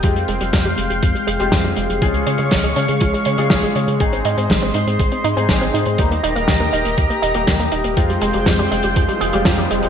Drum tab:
HH |xxxxx-xxxxxxxxxx|xxxxxxxxxxxxxxxx|xxxxx-xxxxxxxxxx|xxxxx-xxxxxxxxxx|
SD |----o-------o---|----o-------o---|----o-------o---|----o-------o---|
BD |o---o---o---o---|o---o---o---o---|o---o---o---o---|o---o---o---o---|

HH |xxxxx-xxxxxxxxxx|
SD |----o-------o---|
BD |o---o---o---o---|